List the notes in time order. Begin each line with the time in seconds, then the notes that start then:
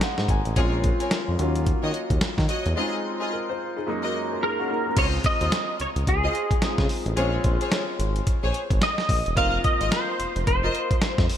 Already playing: G#3 A#3 C#4 D#4 F5
0.01 F#5, snare, closed hi-hat
0.18 G#2, snare
0.28 G#1 G#5, kick, closed hi-hat
0.45 A1, closed hi-hat
0.56 A#1 G#3 C4 C#4 F4 G#4 A#4 C#5, kick, closed hi-hat
0.84 kick, closed hi-hat
1.00 G#4 A#4 C#5, closed hi-hat
1.11 snare, closed hi-hat
1.28 F2
1.39 D#2 F#3 A#3 C#4 F4, closed hi-hat
1.55 closed hi-hat
1.66 kick, closed hi-hat
1.83 D#3 F#4 C#5 D#5
1.94 closed hi-hat
2.10 D#2, kick, closed hi-hat
2.21 snare, closed hi-hat
2.38 D#3, kick, snare
2.49 F#4 C#5 D#5, closed hi-hat
2.66 E2, closed hi-hat
2.76 G#3 C4 D#4 F4 G#4 D#5
3.20 F4 G#4 D#5
3.33 F4 A#4
3.49 F4 C5
3.76 D#4 G#4
3.86 F#2 G#3 A#3 C#4 D#4
4.03 F#4 A#4 D#5
4.32 F4 A#4
4.43 D#4 G#4 A#4
4.60 C#4 F#4
4.70 A#3 D#4
4.87 G#3 C#4
4.96 C#2 G#3 C4 D#4 F4 C5 C#5 D#5, kick, closed hi-hat, crash
5.24 D#5, kick, closed hi-hat
5.41 D#2 F4 C5 D#5, closed hi-hat
5.52 snare, closed hi-hat
5.80 C#2 C#5, closed hi-hat
5.96 C#2, closed hi-hat
6.07 C#2 G#4, kick, closed hi-hat
6.23 F4 C5 D#5
6.35 closed hi-hat
6.51 kick, closed hi-hat
6.62 G#3 C4 D#4 F4, snare, closed hi-hat
6.78 C#3, kick, snare
6.89 open hi-hat
7.06 A1, closed hi-hat
7.16 A#1 G#3 C4 C#4 F4 G#4 C5 C#5, closed hi-hat
7.44 A#1, kick, closed hi-hat
7.61 G#4 C5 C#5, closed hi-hat
7.72 snare, closed hi-hat
7.99 G#1, closed hi-hat
8.16 closed hi-hat
8.27 kick, closed hi-hat
8.43 A#1 G#4 C5 C#5
8.54 closed hi-hat
8.71 G#1, kick, closed hi-hat
8.82 D#5, snare, closed hi-hat
8.98 snare
9.09 A#1, kick, open hi-hat
9.26 E1, closed hi-hat
9.36 F1 A#3 C4 D#4 F4 A#4 D#5 F5, kick, closed hi-hat
9.64 D#5, kick, closed hi-hat
9.80 G#1 F4 A#4 D#5, closed hi-hat
9.92 C5, snare, closed hi-hat
10.19 F1, closed hi-hat
10.36 F1, closed hi-hat
10.47 F1 C5, kick, closed hi-hat
10.63 F4 A#4 D#5
10.75 closed hi-hat
10.91 kick, closed hi-hat
11.02 snare, closed hi-hat
11.18 F2, kick, snare
11.29 open hi-hat